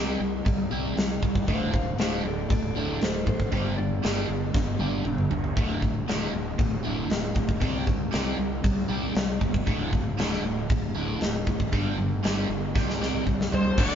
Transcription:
Already playing: C2 C3 G3 C4
0.20 C2 C3 G3
0.46 C2 C3 G3, kick, open hi-hat
0.71 C2 C3 G3 C4
0.97 C2 C3 G3, snare, open hi-hat
1.22 C2 C3 G3, kick
1.35 kick
1.47 D1 D2 A2 D3 C5 F5, kick, open hi-hat
1.72 D2 A2 C5 F5, kick
1.98 D1 D2 A2 D3 C5 F5, snare, open hi-hat
2.24 D1 D2 A2 A4 D5
2.49 D1 D2 A2 A4 D5, kick, open hi-hat
2.74 D1 D2 A2 D3 A4 D5
3.02 D1 D2 A2 A4 C5, snare, open hi-hat
3.27 A1 D2 A2 A4 C5, kick
3.40 kick
3.52 G1 G2 D3 G3 G4 C5, kick, open hi-hat
3.77 G2 D3 D5
4.03 G1 G2 D3 G3, snare, open hi-hat
4.29 G1 G2 D3
4.54 G1 G2 D3, kick, snare
4.79 G1 G2 D3 G3, high tom
5.05 G1 G2 D3, mid tom
5.18 mid tom
5.31 G1 G2 D3, floor tom
5.44 floor tom
5.56 D1 D2 A2 D3, kick, open hi-hat
5.82 D2 A2, kick
6.06 D1 D2 A2 D3, snare, open hi-hat
6.32 D1 D2 A2
6.58 D1 D2 A2, kick, open hi-hat
6.84 D1 D2 A2 D3
7.09 D1 D2 A2, snare, open hi-hat
7.35 D1 D2 A2, kick
7.49 kick
7.61 C2 C3 G3 C4, kick, open hi-hat
7.86 C3 G3, kick
8.12 C2 C3 G3 C4, snare, open hi-hat
8.39 C2 C3 G3
8.64 C2 C3 G3, kick, open hi-hat
8.89 C2 C3 G3 C4
9.15 C2 C3 G3, snare, open hi-hat
9.40 E1 C3 G3, kick
9.54 kick
9.67 D1 D2 A2 D3, kick, open hi-hat
9.93 D2 A2, kick
10.18 D1 D2 A2 D3, snare, open hi-hat
10.33 snare
10.42 D1 D2 A2
10.70 D1 D2 A2, kick, open hi-hat
10.95 D1 D2 A2 D3
11.21 D1 D2 A2, snare, open hi-hat
11.47 A1 D2 A2, kick
11.60 kick
11.72 G1 G2 D3 G3, kick, open hi-hat
11.99 G2 D3
12.23 G1 G2 D3 G3, snare, open hi-hat
12.49 G1 G2 D3
12.74 C2 C3 G3 C4, kick, snare
12.90 snare
13.00 C2 C3 G3 C4, snare
13.13 mid tom
13.25 C2 C3 G3, kick
13.41 snare
13.51 C2 C3 G3 C5, floor tom
13.65 floor tom
13.76 D1 D2 A2 D3 A3 D4 F#4 A4 F#5, kick, crash
13.80 D5

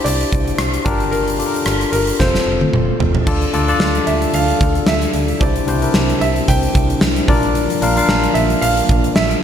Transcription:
Already playing: D4 E4 G4 C5
0.04 C2 D5, closed hi-hat
0.21 closed hi-hat
0.32 C2, kick, closed hi-hat
0.48 closed hi-hat
0.58 C2, cross-stick, closed hi-hat
0.74 closed hi-hat
0.85 G1 D4 F4 G4 A#4, kick, closed hi-hat
1.00 closed hi-hat
1.11 A#4, closed hi-hat
1.28 closed hi-hat
1.38 D4 F4 G4 A4, closed hi-hat
1.46 A#4
1.54 closed hi-hat
1.66 G1, cross-stick, closed hi-hat
1.81 closed hi-hat
1.92 G1 A#4, closed hi-hat
2.07 closed hi-hat
2.19 F1 C4 F4 A4 C5, kick, snare
2.35 snare
2.46 F1
2.61 high tom
2.73 F1, mid tom
3.00 F1, floor tom
3.15 floor tom
3.26 D2 D3 D4 F4 A4 D5, kick, crash
3.42 closed hi-hat
3.53 D2 D4 F4 A4 D5, closed hi-hat
3.68 D4 F4 A4 D5, closed hi-hat
3.80 D2, snare
3.95 closed hi-hat
4.07 D2 E5, closed hi-hat
4.22 closed hi-hat
4.34 D2 F5, closed hi-hat
4.48 closed hi-hat
4.61 D2, kick, closed hi-hat
4.75 closed hi-hat
4.87 D2 E5, snare
5.02 closed hi-hat
5.13 D2, closed hi-hat
5.28 closed hi-hat
5.40 C2 C3 C4 D4 E4 G4 C5 D5, kick, closed hi-hat
5.56 closed hi-hat
5.67 C2 D4 E4 G4 C5, closed hi-hat
5.82 D4 E4 G4 A#4, closed hi-hat
5.94 C2, snare
6.09 closed hi-hat
6.21 C2 E5, closed hi-hat
6.36 closed hi-hat
6.48 C2 G5, kick, closed hi-hat
6.63 closed hi-hat
6.75 C2, kick, closed hi-hat
6.90 closed hi-hat
7.01 C2, snare
7.16 closed hi-hat
7.28 A#1 F3 A#3 D4 F4 A#4 D5, kick, open hi-hat
7.43 closed hi-hat
7.55 closed hi-hat
7.70 closed hi-hat
7.82 A#1 D4 F4 A#4 F5, closed hi-hat
7.96 D4 F4 A#4 F5, closed hi-hat
8.08 A#1, snare
8.24 closed hi-hat
8.34 A#1 E5, closed hi-hat
8.50 closed hi-hat
8.62 A#1 F5, closed hi-hat
8.77 closed hi-hat
8.89 A#1, kick, closed hi-hat
9.04 closed hi-hat
9.16 A#1 E5, snare
9.31 closed hi-hat

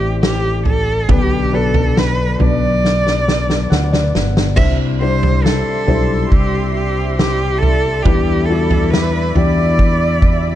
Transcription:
Already playing: A1 A3 C4 E4 G4 C5 D5
0.23 G4, snare
0.65 A4, floor tom
1.09 B1 B2 D3 B3 D4 G4 B4, kick, floor tom
1.52 F#3 B3 D4 A4 B4
1.74 floor tom
1.97 B4, snare
2.39 B1 F#3 B3 D4 B4 D5, floor tom
2.85 snare
3.07 snare
3.28 snare
3.50 snare
3.70 D2 F#5, snare
3.92 D5, snare
4.15 G1, snare
4.37 snare
4.56 C2 C3 G3 D4 E4 C5 D5 E5 C6, kick, floor tom, crash
5.00 G3 D4 E4 C5
5.23 floor tom
5.44 A4, snare
5.87 B1 G3 D4 E4 C5, floor tom
6.31 C2 G4, kick
6.74 G4
7.17 G4, snare
7.59 A4
7.63 floor tom
8.02 E2 E3 G3 D4 E4 G4 B4 E5 B5, kick, floor tom
8.46 G3 D4 A4
8.50 E4 F#4
8.71 floor tom
8.90 B4, snare
9.35 E2 E3 D4 E4 G4 D5, floor tom
9.79 kick
10.22 kick

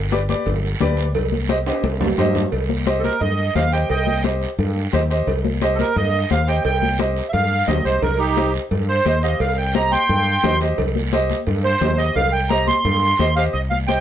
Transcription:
Already playing: G1
0.11 G4 B4 D5, cowbell, high conga, short guiro
0.29 G4 B4 D5, high conga, short guiro
0.46 G1, cowbell, low conga, long guiro
0.64 high conga
0.80 D2 G4 B4 D5, cowbell, high conga, low conga, short guiro
0.97 short guiro
1.15 C2, cowbell, high conga, low conga, long guiro
1.32 high conga
1.49 G4 C5 D#5, cowbell, high conga, short guiro
1.66 G4 C5 D#5, high timbale, short guiro
1.83 C2, cowbell, high conga, long guiro
2.01 low conga, low timbale
2.18 G2 G4 C5 D#5, cowbell, low conga, low timbale, short guiro
2.35 low conga, low timbale, short guiro
2.52 C2, cowbell, high conga, long guiro
2.69 high conga
2.86 G4 C5 D#5, cowbell, high conga, short guiro
2.99 A4
3.04 A#4, high conga, short guiro
3.21 G2 D#5, cowbell, low conga, long guiro
3.39 high conga
3.55 D#2 G4 C5 D#5 F5, cowbell, high conga, low conga, short guiro
3.73 G4 C5 D#5 G5, short guiro
3.90 C2 D#5 G5, cowbell, high conga, long guiro
4.07 high conga
4.24 G4 C5 D#5, cowbell, high conga, short guiro
4.42 short guiro
4.58 G2, cowbell, low conga, long guiro
4.76 high conga
4.92 D#2 G4 C5 D#5, cowbell, high conga, low conga, short guiro
5.10 G4 C5 D#5, short guiro
5.27 C2, cowbell, high conga, low conga, long guiro
5.45 high conga
5.62 G4 C5 D#5, cowbell, high conga, short guiro
5.75 A4, short guiro
5.79 A#4, high conga
5.96 G2 D#5, cowbell, low conga, long guiro
6.14 high conga
6.30 D#2 G4 C5 F5, cowbell, high conga, short guiro
6.47 G4 C5 D#5 G5, short guiro
6.64 C2 G5, cowbell, high conga, long guiro
6.83 high conga
6.99 G4 C5 D#5, cowbell, high conga, short guiro
7.16 short guiro
7.29 E5
7.33 G2 F5, cowbell, low conga, long guiro
7.51 high conga
7.67 D2 G4 C5 D#5, cowbell, high conga, low conga, low timbale, short guiro
7.84 C2 G4 C5 D#5, short guiro
8.02 C2 A#4, cowbell, high conga, low conga, long guiro
8.18 D#4 G4
8.36 G4 C5 D#5, cowbell, high conga, short guiro
8.54 short guiro
8.71 G2, cowbell, low conga, long guiro
8.88 C5, high conga
9.05 D#2 G4 C5 D#5, cowbell, high conga, short guiro
9.23 G4 C5 D#5 F5, short guiro
9.40 C2 F5, cowbell, high conga, long guiro
9.57 G5
9.75 G4 C5 D#5 A#5, cowbell, high conga, short guiro
9.92 G5 C6, high conga, short guiro
10.09 G2, cowbell, low conga, long guiro
10.27 high conga
10.43 D#2 G4 C5 D#5, cowbell, high conga, low conga, low timbale, short guiro
10.60 G4 C5 D#5, short guiro
10.78 C2, cowbell, high conga, low conga, long guiro
10.95 high conga
11.12 G4 C5 D#5, cowbell, high conga, short guiro
11.30 high conga, short guiro
11.47 G2, cowbell, low conga, long guiro
11.65 C5, high conga
11.81 D#2 G4 C5 D#5, cowbell, high conga, low conga, low timbale, short guiro
11.98 G4 C5 D#5, short guiro
12.15 C2 F5, cowbell, high conga, low conga, long guiro
12.32 G5
12.49 G4 C5 D#5 A#5, cowbell, high conga, short guiro
12.68 C6, high conga, short guiro
12.85 G2, cowbell, low conga, long guiro
13.03 high conga
13.19 D#2 G4 C5 D#5, cowbell, high conga, short guiro
13.36 G4 C5 D#5 F5, short guiro
13.53 C2 D#5, high conga, long guiro
13.70 F5, high conga
13.87 G4 C5 D#5 G5, high conga, short guiro

